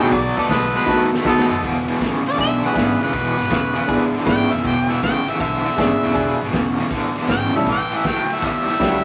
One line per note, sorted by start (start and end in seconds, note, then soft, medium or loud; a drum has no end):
0.00 0.10 A2 medium
0.00 0.11 F#3 medium
0.00 0.10 F#4 medium
0.00 0.11 G#4 medium
0.00 0.14 G5 medium
0.00 snare soft
0.00 ride medium
0.12 0.29 B1 medium
0.12 0.35 B2 medium
0.12 0.35 F#3 loud
0.12 0.36 D5 medium
0.12 kick medium
0.12 snare soft
0.12 ride medium
0.36 0.46 D#2 medium
0.36 0.48 B2 medium
0.36 0.49 F#3 medium
0.36 0.79 A3 medium
0.36 0.79 B3 medium
0.36 0.79 D#4 medium
0.36 0.79 A4 medium
0.36 0.50 D5 loud
0.36 snare soft
0.36 ride medium
0.49 0.75 B1 medium
0.49 0.72 B2 medium
0.49 0.72 G#3 medium
0.49 0.74 B4 medium
0.49 kick medium
0.49 snare loud
0.49 ride medium
0.75 0.86 B2 medium
0.75 0.86 G#3 medium
0.75 1.12 B4 loud
0.75 snare soft
0.75 ride medium
0.86 1.13 E2 loud
0.86 1.10 B2 medium
0.86 1.09 A3 medium
0.86 1.10 A3 medium
0.86 1.10 B3 medium
0.86 1.10 D#4 medium
0.86 1.10 F#4 medium
0.86 1.10 A4 medium
0.86 kick loud
0.86 snare medium
1.13 1.24 B2 medium
1.13 1.25 A3 medium
1.13 snare medium
1.25 1.42 D#2 medium
1.25 1.48 B2 medium
1.25 1.48 G#3 medium
1.25 1.47 A3 medium
1.25 1.62 A3 loud
1.25 1.62 B3 loud
1.25 1.48 B3 medium
1.25 1.62 D#4 medium
1.25 1.48 D#4 medium
1.25 1.48 F#4 medium
1.25 1.62 A4 loud
1.25 1.48 A4 medium
1.25 kick medium
1.25 snare medium
1.39 snare medium
1.49 1.58 F#2 loud
1.49 1.62 B2 medium
1.49 1.62 G#3 medium
1.63 1.89 E1 medium
1.63 1.85 E2 medium
1.63 1.86 B2 medium
1.63 kick medium
1.63 snare soft
1.63 ride medium
1.88 1.99 E2 medium
1.88 1.99 B2 medium
1.88 snare soft
1.88 ride medium
2.00 2.26 A1 medium
2.00 2.23 E2 medium
2.00 2.23 C#3 medium
2.00 kick medium
2.00 snare medium
2.00 ride medium
2.26 2.37 E2 medium
2.26 2.37 C#3 medium
2.26 2.39 D5 medium
2.26 snare soft
2.26 ride medium
2.36 2.64 B1 medium
2.36 2.61 E2 medium
2.36 2.61 D3 medium
2.36 2.60 G#3 medium
2.36 2.60 B3 soft
2.36 2.60 D4 soft
2.36 2.60 E4 soft
2.36 2.61 G#4 medium
2.36 kick medium
2.36 snare soft
2.36 ride medium
2.41 2.64 E5 loud
2.63 2.74 E2 medium
2.63 2.74 D3 medium
2.63 2.72 F#4 medium
2.63 2.74 G#4 medium
2.63 3.01 B4 medium
2.63 snare soft
2.63 ride medium
2.73 2.93 G#1 medium
2.73 2.98 E2 medium
2.73 2.97 G#3 medium
2.73 2.98 B3 medium
2.73 2.98 D4 medium
2.73 2.97 E4 medium
2.73 2.98 G#4 medium
2.73 kick medium
2.73 ride medium
2.77 2.99 C#3 medium
2.77 snare loud
3.01 3.10 E1 medium
3.01 3.12 E2 medium
3.01 3.13 C#3 medium
3.01 4.12 B4 loud
3.01 snare soft
3.01 ride medium
3.13 3.31 E1 medium
3.13 3.36 E2 medium
3.13 3.36 B2 medium
3.13 kick medium
3.13 snare soft
3.13 ride medium
3.37 3.48 G#1 medium
3.37 3.48 E2 medium
3.37 3.49 B2 medium
3.37 snare soft
3.37 ride medium
3.50 3.77 E1 medium
3.50 3.73 E2 medium
3.50 3.74 C#3 medium
3.50 kick medium
3.50 snare medium
3.50 ride medium
3.75 3.87 E2 medium
3.75 3.87 C#3 medium
3.75 snare soft
3.75 ride medium
3.87 4.15 A1 medium
3.87 4.12 E2 medium
3.87 4.12 D3 medium
3.87 4.11 G#3 medium
3.87 4.11 B3 soft
3.87 4.11 D4 soft
3.87 4.11 E4 soft
3.87 4.11 G#4 medium
3.87 kick medium
3.87 snare soft
3.87 ride medium
4.13 4.25 E2 medium
4.13 4.25 D3 medium
4.13 snare soft
4.13 ride medium
4.24 4.44 G#1 medium
4.24 4.49 E2 medium
4.24 4.49 C#3 medium
4.24 4.48 G#3 medium
4.24 4.49 B3 medium
4.24 4.49 D4 medium
4.24 4.49 E4 medium
4.24 4.49 B4 medium
4.24 kick medium
4.24 snare loud
4.24 ride medium
4.28 4.53 G5 medium
4.50 4.61 E1 medium
4.50 4.62 E2 medium
4.50 4.63 C#3 medium
4.50 4.64 E5 medium
4.50 snare soft
4.50 ride medium
4.63 4.91 E1 medium
4.63 4.87 E2 medium
4.63 4.87 B2 medium
4.63 4.92 G5 medium
4.63 kick medium
4.63 snare soft
4.63 ride medium
4.89 5.01 E2 medium
4.89 5.01 B2 medium
4.89 5.02 E5 medium
4.89 snare soft
4.89 ride medium
5.02 5.28 A1 medium
5.02 5.25 E2 medium
5.02 5.25 C#3 medium
5.02 5.27 G5 medium
5.02 kick medium
5.02 snare loud
5.02 ride medium
5.28 5.38 E2 medium
5.28 5.39 C#3 medium
5.28 5.41 E5 medium
5.28 snare soft
5.28 ride medium
5.39 5.66 B1 medium
5.39 5.62 E2 medium
5.39 5.63 D3 medium
5.39 6.51 E5 medium
5.39 kick medium
5.39 snare soft
5.39 ride medium
5.65 5.76 E2 medium
5.65 5.77 D3 medium
5.65 snare soft
5.65 ride medium
5.76 5.95 G#1 medium
5.76 6.01 E2 medium
5.76 6.01 C#3 medium
5.76 6.12 G#3 medium
5.76 6.12 B3 medium
5.76 6.12 D4 medium
5.76 6.12 E4 medium
5.76 6.12 G#4 medium
5.76 kick medium
5.76 snare loud
5.76 ride medium
6.02 6.11 E1 medium
6.02 6.14 E2 medium
6.02 6.15 C#3 medium
6.02 snare soft
6.02 ride medium
6.13 6.33 E1 medium
6.13 6.39 E2 medium
6.13 6.39 B2 loud
6.13 6.37 G#3 medium
6.13 6.37 B3 medium
6.13 6.38 D4 medium
6.13 6.38 E4 medium
6.13 6.38 G#4 medium
6.13 kick medium
6.13 snare soft
6.13 ride medium
6.41 6.49 G#1 medium
6.41 6.53 E2 medium
6.41 6.53 B2 medium
6.41 snare soft
6.41 ride medium
6.53 6.79 E1 medium
6.53 6.77 E2 medium
6.53 6.77 C#3 medium
6.53 kick medium
6.53 snare loud
6.53 ride medium
6.78 6.90 E2 medium
6.78 6.91 C#3 medium
6.78 snare soft
6.78 ride medium
6.91 7.17 A1 medium
6.91 7.14 E2 medium
6.91 7.14 D3 medium
6.91 kick medium
6.91 snare soft
6.91 ride medium
7.16 7.28 E2 medium
7.16 7.28 D3 medium
7.16 snare soft
7.16 ride medium
7.27 7.46 G#1 medium
7.27 7.52 E2 medium
7.27 7.53 C#3 medium
7.27 7.54 G5 loud
7.27 kick medium
7.27 snare loud
7.27 ride medium
7.53 7.63 E1 medium
7.53 7.66 E2 medium
7.53 7.67 C#3 medium
7.53 7.66 G3 medium
7.53 7.66 A3 medium
7.53 7.67 C#4 medium
7.53 7.66 E4 medium
7.53 7.67 A4 medium
7.53 7.67 E5 medium
7.53 snare soft
7.53 ride medium
7.66 7.92 A1 medium
7.66 7.90 A2 medium
7.66 7.91 E3 medium
7.66 kick medium
7.66 snare soft
7.66 ride medium
7.72 7.98 G5 medium
7.92 8.04 A2 medium
7.92 8.04 E3 medium
7.92 snare soft
7.92 ride medium
7.96 8.06 E5 medium
8.04 8.31 D2 medium
8.04 8.28 A2 medium
8.04 8.28 F#3 medium
8.04 8.35 G5 medium
8.04 kick medium
8.04 snare loud
8.04 ride medium
8.30 8.42 A2 medium
8.30 8.43 F#3 medium
8.30 8.44 E5 medium
8.30 snare soft
8.30 ride medium
8.42 8.69 E2 medium
8.42 8.66 A2 medium
8.42 8.66 G3 medium
8.42 kick medium
8.42 snare soft
8.42 ride medium
8.47 9.04 E5 medium
8.68 8.80 A2 medium
8.68 8.80 G3 medium
8.68 snare soft
8.68 ride medium
8.79 8.98 C#2 medium
8.79 9.04 A2 medium
8.79 9.04 F#3 medium
8.79 9.04 G3 medium
8.79 9.04 A3 medium
8.79 9.04 C#4 medium
8.79 9.04 E4 medium
8.79 9.04 G4 medium
8.79 kick medium
8.79 snare loud
8.79 ride medium